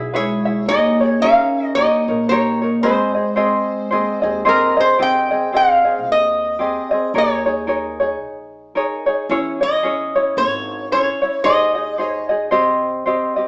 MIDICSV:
0, 0, Header, 1, 5, 480
1, 0, Start_track
1, 0, Key_signature, -4, "major"
1, 0, Tempo, 538117
1, 609, Time_signature, 4, 2, 24, 8
1, 12022, End_track
2, 0, Start_track
2, 0, Title_t, "Resonator guitar played with a steel bar"
2, 0, Program_c, 0, 25
2, 142, Note_on_c, 0, 73, 91
2, 607, Note_off_c, 0, 73, 0
2, 611, Note_on_c, 0, 75, 106
2, 1057, Note_off_c, 0, 75, 0
2, 1087, Note_on_c, 0, 77, 101
2, 1558, Note_off_c, 0, 77, 0
2, 1561, Note_on_c, 0, 75, 95
2, 2040, Note_off_c, 0, 75, 0
2, 2043, Note_on_c, 0, 73, 89
2, 2520, Note_off_c, 0, 73, 0
2, 2523, Note_on_c, 0, 72, 87
2, 3932, Note_off_c, 0, 72, 0
2, 4001, Note_on_c, 0, 70, 83
2, 4274, Note_off_c, 0, 70, 0
2, 4285, Note_on_c, 0, 72, 87
2, 4473, Note_off_c, 0, 72, 0
2, 4481, Note_on_c, 0, 79, 107
2, 4960, Note_off_c, 0, 79, 0
2, 4964, Note_on_c, 0, 77, 91
2, 5441, Note_off_c, 0, 77, 0
2, 5458, Note_on_c, 0, 75, 83
2, 6402, Note_off_c, 0, 75, 0
2, 6406, Note_on_c, 0, 73, 80
2, 6836, Note_off_c, 0, 73, 0
2, 8588, Note_on_c, 0, 75, 95
2, 9254, Note_off_c, 0, 75, 0
2, 9257, Note_on_c, 0, 73, 93
2, 9700, Note_off_c, 0, 73, 0
2, 9742, Note_on_c, 0, 73, 90
2, 10201, Note_off_c, 0, 73, 0
2, 10204, Note_on_c, 0, 75, 93
2, 10731, Note_off_c, 0, 75, 0
2, 10731, Note_on_c, 0, 73, 93
2, 10930, Note_off_c, 0, 73, 0
2, 12022, End_track
3, 0, Start_track
3, 0, Title_t, "Ukulele"
3, 0, Program_c, 1, 24
3, 0, Note_on_c, 1, 64, 46
3, 0, Note_on_c, 1, 68, 55
3, 0, Note_on_c, 1, 76, 67
3, 117, Note_off_c, 1, 64, 0
3, 119, Note_off_c, 1, 68, 0
3, 121, Note_on_c, 1, 71, 75
3, 123, Note_off_c, 1, 76, 0
3, 128, Note_on_c, 1, 64, 72
3, 130, Note_on_c, 1, 68, 80
3, 133, Note_on_c, 1, 76, 81
3, 394, Note_off_c, 1, 76, 0
3, 404, Note_off_c, 1, 68, 0
3, 405, Note_off_c, 1, 71, 0
3, 405, Note_on_c, 1, 76, 51
3, 408, Note_off_c, 1, 64, 0
3, 415, Note_on_c, 1, 68, 47
3, 424, Note_on_c, 1, 64, 42
3, 607, Note_off_c, 1, 76, 0
3, 610, Note_on_c, 1, 70, 73
3, 612, Note_off_c, 1, 68, 0
3, 617, Note_off_c, 1, 64, 0
3, 618, Note_on_c, 1, 63, 76
3, 623, Note_on_c, 1, 68, 84
3, 625, Note_on_c, 1, 73, 83
3, 885, Note_off_c, 1, 73, 0
3, 890, Note_off_c, 1, 70, 0
3, 894, Note_off_c, 1, 63, 0
3, 894, Note_off_c, 1, 68, 0
3, 895, Note_on_c, 1, 73, 46
3, 905, Note_on_c, 1, 68, 40
3, 913, Note_on_c, 1, 63, 39
3, 1090, Note_off_c, 1, 63, 0
3, 1091, Note_on_c, 1, 70, 77
3, 1093, Note_off_c, 1, 73, 0
3, 1094, Note_off_c, 1, 68, 0
3, 1100, Note_on_c, 1, 63, 76
3, 1104, Note_on_c, 1, 68, 83
3, 1104, Note_on_c, 1, 73, 90
3, 1570, Note_off_c, 1, 70, 0
3, 1573, Note_off_c, 1, 68, 0
3, 1576, Note_off_c, 1, 63, 0
3, 1576, Note_on_c, 1, 67, 60
3, 1577, Note_off_c, 1, 73, 0
3, 1579, Note_on_c, 1, 63, 64
3, 1582, Note_on_c, 1, 70, 60
3, 1590, Note_on_c, 1, 73, 66
3, 1849, Note_off_c, 1, 73, 0
3, 1853, Note_off_c, 1, 67, 0
3, 1854, Note_off_c, 1, 63, 0
3, 1856, Note_off_c, 1, 70, 0
3, 1860, Note_on_c, 1, 73, 48
3, 1869, Note_on_c, 1, 70, 47
3, 1875, Note_on_c, 1, 63, 44
3, 2049, Note_off_c, 1, 63, 0
3, 2054, Note_off_c, 1, 70, 0
3, 2055, Note_off_c, 1, 73, 0
3, 2059, Note_on_c, 1, 67, 79
3, 2060, Note_on_c, 1, 63, 71
3, 2065, Note_on_c, 1, 70, 77
3, 2074, Note_on_c, 1, 73, 77
3, 2322, Note_off_c, 1, 73, 0
3, 2329, Note_off_c, 1, 70, 0
3, 2333, Note_on_c, 1, 73, 57
3, 2334, Note_off_c, 1, 67, 0
3, 2335, Note_off_c, 1, 63, 0
3, 2348, Note_on_c, 1, 70, 45
3, 2356, Note_on_c, 1, 63, 43
3, 2522, Note_off_c, 1, 73, 0
3, 2525, Note_on_c, 1, 72, 67
3, 2530, Note_off_c, 1, 63, 0
3, 2530, Note_off_c, 1, 70, 0
3, 2534, Note_on_c, 1, 60, 79
3, 2534, Note_on_c, 1, 68, 79
3, 2541, Note_on_c, 1, 75, 78
3, 2796, Note_off_c, 1, 75, 0
3, 2806, Note_on_c, 1, 75, 43
3, 2808, Note_off_c, 1, 72, 0
3, 2810, Note_off_c, 1, 68, 0
3, 2812, Note_off_c, 1, 60, 0
3, 2821, Note_on_c, 1, 68, 38
3, 2828, Note_on_c, 1, 60, 41
3, 2990, Note_off_c, 1, 60, 0
3, 2994, Note_off_c, 1, 68, 0
3, 2996, Note_on_c, 1, 72, 74
3, 2997, Note_off_c, 1, 75, 0
3, 3001, Note_on_c, 1, 60, 86
3, 3005, Note_on_c, 1, 68, 87
3, 3007, Note_on_c, 1, 75, 79
3, 3481, Note_off_c, 1, 72, 0
3, 3484, Note_on_c, 1, 72, 64
3, 3492, Note_off_c, 1, 60, 0
3, 3496, Note_off_c, 1, 68, 0
3, 3496, Note_on_c, 1, 60, 67
3, 3499, Note_on_c, 1, 68, 73
3, 3503, Note_off_c, 1, 75, 0
3, 3507, Note_on_c, 1, 75, 74
3, 3752, Note_off_c, 1, 75, 0
3, 3763, Note_on_c, 1, 75, 54
3, 3765, Note_off_c, 1, 68, 0
3, 3767, Note_off_c, 1, 72, 0
3, 3773, Note_off_c, 1, 60, 0
3, 3776, Note_on_c, 1, 68, 50
3, 3784, Note_on_c, 1, 60, 50
3, 3962, Note_off_c, 1, 60, 0
3, 3966, Note_off_c, 1, 68, 0
3, 3967, Note_off_c, 1, 75, 0
3, 3968, Note_on_c, 1, 72, 77
3, 3973, Note_on_c, 1, 60, 84
3, 3977, Note_on_c, 1, 68, 83
3, 3982, Note_on_c, 1, 75, 85
3, 4242, Note_off_c, 1, 75, 0
3, 4250, Note_off_c, 1, 72, 0
3, 4252, Note_off_c, 1, 60, 0
3, 4253, Note_on_c, 1, 75, 60
3, 4254, Note_off_c, 1, 68, 0
3, 4263, Note_on_c, 1, 68, 51
3, 4273, Note_on_c, 1, 60, 44
3, 4441, Note_off_c, 1, 60, 0
3, 4445, Note_off_c, 1, 68, 0
3, 4448, Note_on_c, 1, 67, 69
3, 4452, Note_off_c, 1, 75, 0
3, 4452, Note_on_c, 1, 60, 68
3, 4456, Note_on_c, 1, 68, 78
3, 4462, Note_on_c, 1, 75, 80
3, 4723, Note_off_c, 1, 75, 0
3, 4729, Note_off_c, 1, 67, 0
3, 4730, Note_off_c, 1, 68, 0
3, 4731, Note_off_c, 1, 60, 0
3, 4734, Note_on_c, 1, 75, 49
3, 4741, Note_on_c, 1, 68, 45
3, 4748, Note_on_c, 1, 60, 36
3, 4922, Note_off_c, 1, 60, 0
3, 4927, Note_on_c, 1, 67, 49
3, 4931, Note_off_c, 1, 68, 0
3, 4933, Note_off_c, 1, 75, 0
3, 4933, Note_on_c, 1, 60, 65
3, 4941, Note_on_c, 1, 68, 60
3, 4949, Note_on_c, 1, 75, 70
3, 5203, Note_off_c, 1, 75, 0
3, 5205, Note_off_c, 1, 68, 0
3, 5209, Note_off_c, 1, 67, 0
3, 5212, Note_off_c, 1, 60, 0
3, 5214, Note_on_c, 1, 75, 44
3, 5216, Note_on_c, 1, 68, 43
3, 5231, Note_on_c, 1, 60, 42
3, 5872, Note_off_c, 1, 60, 0
3, 5878, Note_on_c, 1, 67, 59
3, 5883, Note_on_c, 1, 60, 53
3, 5890, Note_off_c, 1, 68, 0
3, 5893, Note_on_c, 1, 68, 61
3, 5894, Note_off_c, 1, 75, 0
3, 5898, Note_on_c, 1, 75, 64
3, 6152, Note_off_c, 1, 75, 0
3, 6163, Note_on_c, 1, 75, 60
3, 6164, Note_off_c, 1, 68, 0
3, 6165, Note_off_c, 1, 67, 0
3, 6167, Note_off_c, 1, 60, 0
3, 6175, Note_on_c, 1, 68, 55
3, 6178, Note_on_c, 1, 60, 50
3, 6367, Note_off_c, 1, 75, 0
3, 6368, Note_off_c, 1, 68, 0
3, 6373, Note_off_c, 1, 60, 0
3, 6375, Note_on_c, 1, 70, 65
3, 6377, Note_on_c, 1, 63, 74
3, 6379, Note_on_c, 1, 68, 73
3, 6382, Note_on_c, 1, 73, 83
3, 6640, Note_off_c, 1, 73, 0
3, 6645, Note_off_c, 1, 68, 0
3, 6651, Note_on_c, 1, 73, 46
3, 6653, Note_off_c, 1, 70, 0
3, 6654, Note_off_c, 1, 63, 0
3, 6656, Note_on_c, 1, 68, 45
3, 6668, Note_on_c, 1, 63, 35
3, 6836, Note_off_c, 1, 63, 0
3, 6839, Note_off_c, 1, 68, 0
3, 6841, Note_on_c, 1, 70, 55
3, 6846, Note_on_c, 1, 63, 64
3, 6847, Note_off_c, 1, 73, 0
3, 6850, Note_on_c, 1, 68, 62
3, 6858, Note_on_c, 1, 73, 63
3, 7123, Note_off_c, 1, 73, 0
3, 7126, Note_off_c, 1, 70, 0
3, 7129, Note_off_c, 1, 63, 0
3, 7131, Note_off_c, 1, 68, 0
3, 7133, Note_on_c, 1, 73, 52
3, 7143, Note_on_c, 1, 68, 47
3, 7151, Note_on_c, 1, 63, 45
3, 7800, Note_off_c, 1, 63, 0
3, 7807, Note_on_c, 1, 70, 65
3, 7811, Note_on_c, 1, 63, 72
3, 7815, Note_off_c, 1, 68, 0
3, 7818, Note_off_c, 1, 73, 0
3, 7818, Note_on_c, 1, 68, 72
3, 7822, Note_on_c, 1, 73, 62
3, 8073, Note_off_c, 1, 73, 0
3, 8079, Note_off_c, 1, 68, 0
3, 8083, Note_on_c, 1, 73, 66
3, 8089, Note_off_c, 1, 63, 0
3, 8089, Note_off_c, 1, 70, 0
3, 8090, Note_on_c, 1, 68, 47
3, 8099, Note_on_c, 1, 63, 51
3, 8287, Note_off_c, 1, 73, 0
3, 8288, Note_off_c, 1, 68, 0
3, 8295, Note_off_c, 1, 63, 0
3, 8299, Note_on_c, 1, 68, 82
3, 8302, Note_on_c, 1, 61, 89
3, 8305, Note_on_c, 1, 64, 86
3, 8308, Note_on_c, 1, 73, 99
3, 8559, Note_off_c, 1, 73, 0
3, 8568, Note_off_c, 1, 64, 0
3, 8570, Note_on_c, 1, 73, 50
3, 8575, Note_off_c, 1, 68, 0
3, 8576, Note_off_c, 1, 61, 0
3, 8578, Note_on_c, 1, 64, 43
3, 8588, Note_on_c, 1, 61, 36
3, 8768, Note_off_c, 1, 61, 0
3, 8769, Note_on_c, 1, 68, 59
3, 8770, Note_off_c, 1, 73, 0
3, 8775, Note_off_c, 1, 64, 0
3, 8779, Note_on_c, 1, 61, 61
3, 8785, Note_on_c, 1, 64, 61
3, 8788, Note_on_c, 1, 73, 64
3, 9047, Note_off_c, 1, 73, 0
3, 9050, Note_off_c, 1, 68, 0
3, 9055, Note_off_c, 1, 61, 0
3, 9055, Note_off_c, 1, 64, 0
3, 9058, Note_on_c, 1, 73, 55
3, 9066, Note_on_c, 1, 64, 41
3, 9073, Note_on_c, 1, 61, 42
3, 9733, Note_off_c, 1, 61, 0
3, 9734, Note_off_c, 1, 73, 0
3, 9737, Note_on_c, 1, 68, 61
3, 9738, Note_off_c, 1, 64, 0
3, 9744, Note_on_c, 1, 61, 52
3, 9753, Note_on_c, 1, 64, 52
3, 9753, Note_on_c, 1, 73, 65
3, 9995, Note_off_c, 1, 73, 0
3, 10005, Note_off_c, 1, 64, 0
3, 10006, Note_on_c, 1, 73, 53
3, 10013, Note_off_c, 1, 68, 0
3, 10016, Note_on_c, 1, 64, 48
3, 10017, Note_off_c, 1, 61, 0
3, 10029, Note_on_c, 1, 61, 43
3, 10205, Note_off_c, 1, 61, 0
3, 10207, Note_on_c, 1, 72, 66
3, 10208, Note_off_c, 1, 73, 0
3, 10208, Note_on_c, 1, 63, 73
3, 10209, Note_off_c, 1, 64, 0
3, 10212, Note_on_c, 1, 68, 81
3, 10218, Note_on_c, 1, 75, 81
3, 10471, Note_off_c, 1, 75, 0
3, 10482, Note_on_c, 1, 75, 51
3, 10486, Note_off_c, 1, 68, 0
3, 10488, Note_off_c, 1, 72, 0
3, 10489, Note_off_c, 1, 63, 0
3, 10497, Note_on_c, 1, 68, 43
3, 10503, Note_on_c, 1, 63, 36
3, 10685, Note_off_c, 1, 63, 0
3, 10685, Note_off_c, 1, 75, 0
3, 10687, Note_on_c, 1, 72, 54
3, 10689, Note_off_c, 1, 68, 0
3, 10696, Note_on_c, 1, 63, 53
3, 10699, Note_on_c, 1, 68, 71
3, 10707, Note_on_c, 1, 75, 66
3, 10953, Note_off_c, 1, 75, 0
3, 10963, Note_on_c, 1, 75, 53
3, 10967, Note_off_c, 1, 68, 0
3, 10968, Note_off_c, 1, 72, 0
3, 10972, Note_off_c, 1, 63, 0
3, 10977, Note_on_c, 1, 68, 52
3, 10981, Note_on_c, 1, 63, 43
3, 11158, Note_off_c, 1, 75, 0
3, 11159, Note_on_c, 1, 72, 79
3, 11161, Note_off_c, 1, 63, 0
3, 11164, Note_on_c, 1, 60, 79
3, 11165, Note_off_c, 1, 68, 0
3, 11168, Note_on_c, 1, 67, 83
3, 11168, Note_on_c, 1, 75, 96
3, 11643, Note_off_c, 1, 72, 0
3, 11647, Note_on_c, 1, 72, 59
3, 11648, Note_off_c, 1, 60, 0
3, 11648, Note_off_c, 1, 67, 0
3, 11652, Note_on_c, 1, 60, 69
3, 11658, Note_off_c, 1, 75, 0
3, 11659, Note_on_c, 1, 67, 68
3, 11661, Note_on_c, 1, 75, 63
3, 11909, Note_off_c, 1, 75, 0
3, 11920, Note_off_c, 1, 67, 0
3, 11920, Note_on_c, 1, 75, 54
3, 11924, Note_off_c, 1, 60, 0
3, 11927, Note_off_c, 1, 72, 0
3, 11931, Note_on_c, 1, 67, 50
3, 11935, Note_on_c, 1, 60, 47
3, 12022, Note_off_c, 1, 60, 0
3, 12022, Note_off_c, 1, 67, 0
3, 12022, Note_off_c, 1, 75, 0
3, 12022, End_track
4, 0, Start_track
4, 0, Title_t, "Vibraphone"
4, 0, Program_c, 2, 11
4, 132, Note_on_c, 2, 56, 75
4, 577, Note_off_c, 2, 56, 0
4, 591, Note_on_c, 2, 58, 76
4, 1046, Note_off_c, 2, 58, 0
4, 1072, Note_on_c, 2, 61, 83
4, 1527, Note_off_c, 2, 61, 0
4, 1562, Note_on_c, 2, 58, 75
4, 2012, Note_off_c, 2, 58, 0
4, 2037, Note_on_c, 2, 58, 74
4, 2490, Note_off_c, 2, 58, 0
4, 2513, Note_on_c, 2, 56, 60
4, 3926, Note_off_c, 2, 56, 0
4, 12022, End_track
5, 0, Start_track
5, 0, Title_t, "Upright bass"
5, 0, Program_c, 3, 32
5, 0, Note_on_c, 3, 35, 81
5, 613, Note_off_c, 3, 35, 0
5, 613, Note_on_c, 3, 39, 92
5, 1236, Note_off_c, 3, 39, 0
5, 1578, Note_on_c, 3, 39, 84
5, 1666, Note_off_c, 3, 39, 0
5, 1855, Note_on_c, 3, 34, 83
5, 2541, Note_off_c, 3, 34, 0
5, 2541, Note_on_c, 3, 32, 94
5, 3162, Note_off_c, 3, 32, 0
5, 3500, Note_on_c, 3, 39, 80
5, 3588, Note_off_c, 3, 39, 0
5, 3777, Note_on_c, 3, 39, 83
5, 4217, Note_off_c, 3, 39, 0
5, 4453, Note_on_c, 3, 32, 74
5, 5412, Note_off_c, 3, 32, 0
5, 5412, Note_on_c, 3, 39, 88
5, 6036, Note_off_c, 3, 39, 0
5, 6369, Note_on_c, 3, 39, 87
5, 7326, Note_off_c, 3, 39, 0
5, 7326, Note_on_c, 3, 34, 94
5, 7951, Note_off_c, 3, 34, 0
5, 8291, Note_on_c, 3, 40, 94
5, 9250, Note_on_c, 3, 32, 93
5, 9263, Note_off_c, 3, 40, 0
5, 9873, Note_off_c, 3, 32, 0
5, 10211, Note_on_c, 3, 39, 78
5, 11166, Note_off_c, 3, 39, 0
5, 11166, Note_on_c, 3, 36, 90
5, 11790, Note_off_c, 3, 36, 0
5, 12022, End_track
0, 0, End_of_file